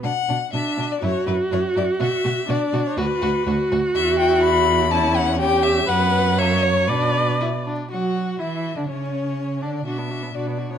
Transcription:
<<
  \new Staff \with { instrumentName = "Violin" } { \time 2/4 \key b \minor \tempo 4 = 123 fis''4 e''8. d''16 | cis''8 b'8 cis''8 d''8 | e''4 d''8. cis''16 | b'4. r8 |
e''8 g''8 b''4 | a''8 fis''8 g''8 e''8 | fis''4 e''8 cis''8 | b'4. r8 |
fis''4 e''8. d''16 | cis''4. d''8 | e''4 d''8. cis''16 | }
  \new Staff \with { instrumentName = "Violin" } { \time 2/4 \key b \minor d'8 d'8 d'8 d'8 | e'8 e'8 e'8 e'8 | fis'8 fis'8 fis'8 fis'8 | fis'8 fis'8 fis'8 fis'8 |
e'2 | cis'2 | b4 ais4 | d'4 e'8 d'8 |
fis'4 e'8. d'16 | cis'4. d'8 | fis'16 d'16 fis'16 d'16 fis'16 d'16 fis'16 d'16 | }
  \new Staff \with { instrumentName = "Viola" } { \time 2/4 \key b \minor r4 d'4 | fis'2~ | fis'4 d'4 | fis'4 fis'4~ |
fis'2 | e'4 g'4 | b'4 cis''4 | d''4. r8 |
fis'4 e'8. d'16 | cis'4. d'8 | d'16 b16 d'16 b16 d'16 b16 d'16 b16 | }
  \new Staff \with { instrumentName = "Cello" } { \clef bass \time 2/4 \key b \minor b,8 b,8 b,8 b,8 | fis,8 fis,8 fis,8 fis,8 | b,8 b,8 b,8 b,8 | d,8 d,8 d,8 d,8 |
e,2~ | e,2 | fis,2 | b,4. r8 |
fis4 e8. d16 | cis4. d8 | b,4 b,4 | }
>>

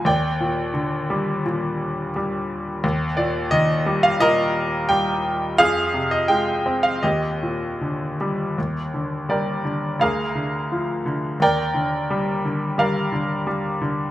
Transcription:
<<
  \new Staff \with { instrumentName = "Grand piano" } { \time 4/4 \key ees \major \tempo 4 = 86 << { g''4 r2. | r8 d''8 ees''8. f''16 ees''4 g''4 | f''8. ees''16 g''8. f''16 ees''4. r8 | r4 d''4 f''2 |
g''2 f''4. r8 | } \\ { d''2 r2 | r2 bes'2 | aes'2 g'2 | r4 <g' bes'>4 <aes' bes'>2 |
<bes' d''>2 <bes' d''>2 | } >> }
  \new Staff \with { instrumentName = "Grand piano" } { \clef bass \time 4/4 \key ees \major ees,8 bes,8 d8 g8 bes,4 g4 | ees,8 bes,8 ees8 g8 bes,4 g4 | f,8 c8 aes8 c'8 ees,8 bes,8 d8 g8 | ees,8 d8 g8 d8 d,8 d8 f8 d8 |
ees,8 d8 g8 d8 g8 d8 g8 d8 | }
>>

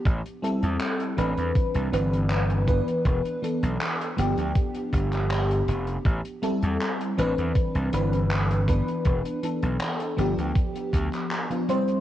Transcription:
<<
  \new Staff \with { instrumentName = "FM electric piano" } { \time 4/4 \key a \minor \tempo 4 = 80 r8 <g c' e' a'>4 <e c' d' b'>4 <e c' d' b'>4 <e b d' b'>8~ | <e b d' b'>8 <e b d' a'>4 <f b d' g'>2~ <f b d' g'>8 | r8 <g c' e' a'>4 <e c' d' b'>4 <e c' d' b'>4 <e b d' b'>8~ | <e b d' b'>8 <e b d' a'>4 <f b d' g'>4.~ <f b d' g'>16 <f b d' f'>16 <g c' e' c''>8 | }
  \new Staff \with { instrumentName = "Slap bass" } { \clef bass \time 4/4 \key a \minor a,,16 r8 e,16 r8 a,,16 e,16 r16 c,16 g,,4~ g,,16 r16 | e,,16 r8 b,,16 r8 g,,16 d,16 r8 g,,4 f,,8 | a,,16 r8 e,16 r8 a,,16 e,16 r16 c,16 g,,4~ g,,16 r16 | e,,16 r8 b,,16 r8 g,,16 d,16 r8 d,16 r4 r16 | }
  \new DrumStaff \with { instrumentName = "Drums" } \drummode { \time 4/4 <hh bd>16 hh16 hh16 hh16 <hc hh>16 hh16 hh16 hh16 <hh bd>16 hh16 hh16 hh16 <hc hh>16 hh16 <hh bd>16 hh16 | <hh bd>16 hh16 hh16 hh16 <hc hh>16 hh16 hh16 hh16 <hh bd>16 hh16 <hh bd>16 <hc hh>16 <hc hh>16 hh16 hh16 hh16 | <hh bd>16 hh16 hh16 hh16 <hc hh>16 hh16 hh16 hh16 <hh bd>16 hh16 hh16 hh16 <hc hh>16 hh16 <hh bd>16 hh16 | <hh bd>16 hh16 hh16 hh16 <hc hh>16 hh16 hh16 hh16 <hh bd>16 hh16 <hh bd>16 <hc hh>16 <hc hh>16 hh16 hh16 hh16 | }
>>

